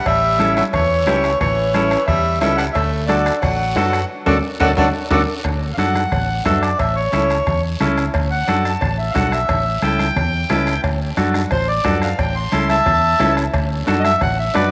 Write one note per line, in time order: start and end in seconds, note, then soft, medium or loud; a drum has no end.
0.06 0.60 A1 loud
0.06 0.53 G3 medium
0.06 0.53 E5 loud
0.06 bombo low medium
0.06 bombo rim medium
0.06 cowbell loud
0.06 long guiro medium
0.39 0.63 C#4 medium
0.39 0.63 E4 medium
0.39 0.63 A4 medium
0.39 bombo rim medium
0.39 cowbell medium
0.39 high conga medium
0.39 short guiro medium
0.56 0.64 F#3 medium
0.56 0.64 E5 medium
0.56 bombo rim medium
0.56 high conga medium
0.56 short guiro medium
0.73 1.07 E2 loud
0.73 1.37 E3 medium
0.73 1.39 C#5 loud
0.73 bombo low medium
0.73 bombo rim medium
0.73 cowbell medium
0.73 low conga medium
0.73 long guiro medium
1.06 1.34 C#2 loud
1.06 1.30 C#4 medium
1.06 1.31 E4 medium
1.06 1.31 G4 medium
1.06 bombo rim medium
1.06 cowbell medium
1.06 high conga medium
1.06 low timbale medium
1.06 short guiro medium
1.24 bombo rim medium
1.24 short guiro medium
1.40 1.95 A1 loud
1.40 2.04 E3 medium
1.40 2.04 C#5 medium
1.40 bombo low medium
1.40 bombo rim medium
1.40 cowbell loud
1.40 low conga medium
1.40 long guiro medium
1.74 1.98 C#4 medium
1.74 1.98 E4 medium
1.74 1.98 A4 medium
1.74 bombo rim medium
1.74 cowbell medium
1.74 high conga medium
1.74 short guiro medium
1.91 bombo rim medium
1.91 short guiro medium
2.07 2.42 E2 loud
2.07 2.39 G3 medium
2.07 2.39 E5 loud
2.07 bombo low medium
2.07 bombo rim medium
2.07 cowbell medium
2.07 low conga medium
2.07 long guiro medium
2.40 2.69 C#2 loud
2.40 2.57 G3 medium
2.40 2.65 C#4 medium
2.40 2.65 E4 medium
2.40 2.65 A4 medium
2.40 2.57 E5 medium
2.40 bombo rim medium
2.40 cowbell medium
2.40 high conga medium
2.40 low timbale medium
2.40 short guiro medium
2.56 2.66 G3 medium
2.56 2.64 F#5 medium
2.56 bombo rim medium
2.56 short guiro medium
2.73 3.29 D2 loud
2.73 3.07 A3 medium
2.73 3.05 E5 medium
2.73 bombo low medium
2.73 bombo rim medium
2.73 cowbell loud
2.73 long guiro medium
3.07 3.40 D3 medium
3.07 3.32 D4 medium
3.07 3.33 F#4 medium
3.07 3.33 A4 medium
3.07 3.39 D5 medium
3.07 bombo rim medium
3.07 cowbell medium
3.07 high conga medium
3.07 short guiro medium
3.26 bombo rim loud
3.26 short guiro medium
3.41 3.76 A1 loud
3.41 4.05 F#3 medium
3.41 4.05 F#5 loud
3.41 bombo low medium
3.41 bombo rim medium
3.41 cowbell medium
3.41 low conga medium
3.41 long guiro medium
3.76 4.03 F#2 loud
3.76 4.00 D4 medium
3.76 4.00 F#4 medium
3.76 4.00 A4 medium
3.76 bombo rim medium
3.76 cowbell medium
3.76 high conga medium
3.76 low timbale medium
3.76 short guiro medium
3.93 bombo rim medium
3.93 short guiro medium
4.26 4.39 D2 loud
4.26 4.35 F#3 loud
4.26 4.38 D4 medium
4.26 4.38 F#4 medium
4.26 4.37 A4 loud
4.26 4.38 A4 loud
4.26 4.38 D5 medium
4.26 4.38 F#5 loud
4.26 bombo low loud
4.26 high conga loud
4.26 high timbale loud
4.26 long guiro medium
4.60 4.73 D2 loud
4.60 4.69 F#3 loud
4.60 4.71 D4 medium
4.60 4.71 F#4 medium
4.60 4.71 A4 loud
4.60 4.72 A4 loud
4.60 4.72 D5 medium
4.60 4.72 F#5 loud
4.60 bombo low loud
4.60 high conga medium
4.60 high timbale loud
4.60 long guiro loud
4.77 4.90 D2 loud
4.77 4.85 F#3 loud
4.77 4.88 D4 loud
4.77 4.88 F#4 loud
4.77 4.88 A4 loud
4.77 4.88 A4 medium
4.77 4.88 D5 loud
4.77 4.88 F#5 loud
4.77 bombo low loud
4.77 high conga loud
4.77 high timbale loud
4.77 long guiro loud
5.11 5.24 D2 loud
5.11 5.19 F#3 medium
5.11 5.22 D4 loud
5.11 5.22 F#4 medium
5.11 5.22 A4 medium
5.11 5.22 D5 loud
5.11 5.22 F#5 loud
5.11 bombo low loud
5.11 high conga loud
5.11 high timbale loud
5.11 long guiro loud
5.44 5.72 D2 medium
5.44 bombo low medium
5.44 bombo rim medium
5.44 cowbell medium
5.44 long guiro medium
5.74 6.05 F#2 loud
5.74 5.76 F5 medium
5.78 6.02 D4 medium
5.78 6.02 F#4 medium
5.78 6.02 A4 medium
5.78 6.44 F#5 medium
5.78 bombo rim medium
5.78 cowbell medium
5.78 high conga medium
5.78 short guiro medium
5.95 bombo rim medium
5.95 high conga medium
5.95 short guiro medium
6.12 6.39 A1 loud
6.12 bombo low medium
6.12 bombo rim medium
6.12 cowbell medium
6.12 low conga medium
6.12 long guiro medium
6.45 6.73 F#2 loud
6.45 6.69 D4 medium
6.45 6.70 F#4 medium
6.45 6.70 A4 medium
6.45 6.62 E5 medium
6.45 bombo low medium
6.45 bombo rim medium
6.45 cowbell medium
6.45 high conga medium
6.45 low timbale medium
6.45 short guiro medium
6.61 6.78 D5 medium
6.61 bombo rim medium
6.61 short guiro medium
6.79 7.07 A1 loud
6.79 6.96 E5 medium
6.79 bombo low medium
6.79 bombo rim medium
6.79 cowbell loud
6.79 long guiro medium
6.96 7.62 C#5 medium
7.12 7.40 C#2 loud
7.12 7.37 C#4 medium
7.12 7.37 E4 medium
7.12 7.37 A4 medium
7.12 bombo rim medium
7.12 cowbell medium
7.12 high conga medium
7.12 short guiro medium
7.30 bombo rim medium
7.30 short guiro medium
7.46 7.74 E2 loud
7.46 bombo low medium
7.46 bombo rim medium
7.46 cowbell medium
7.46 low conga medium
7.46 long guiro medium
7.80 8.08 C#2 loud
7.80 8.04 C#4 loud
7.80 8.04 E4 medium
7.80 8.05 A4 medium
7.80 bombo rim medium
7.80 cowbell medium
7.80 high conga medium
7.80 low conga medium
7.80 short guiro medium
7.97 bombo rim medium
7.97 short guiro medium
8.14 8.42 D2 loud
8.14 bombo low medium
8.14 bombo rim medium
8.14 cowbell loud
8.14 long guiro medium
8.31 8.64 F#5 medium
8.48 8.75 F#2 loud
8.48 8.72 D4 medium
8.48 8.72 F#4 medium
8.48 8.72 A4 medium
8.48 bombo rim medium
8.48 cowbell medium
8.48 high conga medium
8.48 short guiro medium
8.64 8.97 A5 medium
8.64 bombo rim medium
8.64 short guiro medium
8.81 9.09 A1 loud
8.81 bombo low medium
8.81 bombo rim medium
8.81 cowbell medium
8.81 low conga medium
8.81 long guiro medium
8.98 9.15 E5 medium
9.11 9.39 D4 medium
9.11 9.13 F5 medium
9.15 9.43 B1 medium
9.15 9.39 F#4 medium
9.15 9.39 A4 medium
9.15 9.32 F#5 medium
9.15 bombo low medium
9.15 bombo rim medium
9.15 cowbell medium
9.15 high conga medium
9.15 short guiro medium
9.32 9.82 E5 medium
9.32 bombo rim medium
9.32 short guiro medium
9.49 9.76 A1 loud
9.49 bombo low medium
9.49 bombo rim medium
9.49 cowbell loud
9.49 low conga medium
9.49 long guiro medium
9.82 10.10 C#2 loud
9.82 10.06 C#4 medium
9.82 10.07 E4 medium
9.82 10.07 A4 medium
9.82 10.81 G5 loud
9.82 bombo rim medium
9.82 cowbell medium
9.82 high conga medium
9.82 short guiro medium
9.99 bombo rim medium
9.99 high conga medium
9.99 short guiro medium
10.16 10.44 E2 loud
10.16 bombo low medium
10.16 bombo rim medium
10.16 cowbell medium
10.16 low conga medium
10.16 long guiro medium
10.50 10.77 C#2 medium
10.50 10.74 C#4 medium
10.50 10.74 E4 medium
10.50 10.74 A4 medium
10.50 bombo rim medium
10.50 cowbell medium
10.50 high conga medium
10.50 low conga medium
10.50 low timbale medium
10.50 short guiro medium
10.67 bombo rim medium
10.67 short guiro medium
10.84 11.11 D2 loud
10.84 bombo low medium
10.84 bombo rim medium
10.84 cowbell loud
10.84 long guiro medium
11.17 11.45 F#2 loud
11.17 11.41 D4 medium
11.17 11.42 F#4 medium
11.17 11.42 A4 medium
11.17 bombo rim medium
11.17 cowbell medium
11.17 high conga medium
11.17 short guiro medium
11.34 bombo rim medium
11.34 high conga medium
11.34 short guiro medium
11.51 11.78 A1 loud
11.51 11.68 C5 loud
11.51 bombo low medium
11.51 bombo rim medium
11.51 cowbell medium
11.51 low conga medium
11.51 long guiro medium
11.68 12.01 D5 medium
11.84 12.12 F#2 loud
11.84 12.09 D4 medium
11.84 12.09 F#4 medium
11.84 12.09 A4 medium
11.84 bombo low medium
11.84 bombo rim medium
11.84 cowbell medium
11.84 high conga medium
11.84 low timbale medium
11.84 short guiro medium
12.02 12.19 F5 medium
12.02 bombo rim medium
12.02 short guiro medium
12.19 12.46 A1 loud
12.19 12.36 G5 medium
12.19 bombo low medium
12.19 bombo rim medium
12.19 cowbell loud
12.19 long guiro medium
12.35 12.68 C6 loud
12.52 12.80 C#2 loud
12.52 12.76 C#4 medium
12.52 12.76 E4 medium
12.52 12.77 A4 medium
12.52 bombo rim medium
12.52 cowbell medium
12.52 high conga medium
12.52 short guiro medium
12.69 13.33 E5 medium
12.69 13.35 A5 loud
12.69 bombo rim medium
12.69 high conga medium
12.69 short guiro medium
12.86 13.14 E2 loud
12.86 bombo low medium
12.86 bombo rim medium
12.86 cowbell medium
12.86 low conga medium
12.86 long guiro medium
13.20 13.47 C#2 loud
13.20 13.44 C#4 loud
13.20 13.44 E4 medium
13.20 13.44 A4 medium
13.20 bombo rim medium
13.20 cowbell medium
13.20 high conga medium
13.20 low timbale medium
13.20 short guiro medium
13.37 bombo rim medium
13.37 short guiro medium
13.54 13.81 D2 loud
13.54 bombo low medium
13.54 bombo rim medium
13.54 cowbell loud
13.54 long guiro medium
13.87 14.15 F#2 loud
13.87 14.11 D4 medium
13.87 14.11 F#4 medium
13.87 14.11 A4 loud
13.87 bombo rim medium
13.87 cowbell medium
13.87 high conga medium
13.87 short guiro medium
14.00 14.02 D#5 medium
14.04 14.21 E5 loud
14.04 bombo rim medium
14.04 high conga medium
14.04 short guiro medium
14.21 14.49 A1 loud
14.21 14.38 F#5 medium
14.21 bombo low medium
14.21 bombo rim medium
14.21 cowbell medium
14.21 low conga medium
14.21 long guiro medium
14.39 14.55 E5 medium
14.54 14.71 F#2 loud
14.54 14.71 D4 medium
14.54 14.71 F#4 medium
14.54 14.71 B4 medium
14.54 14.71 D5 medium
14.54 bombo rim medium
14.54 cowbell medium
14.54 high conga medium
14.54 low timbale medium
14.54 short guiro medium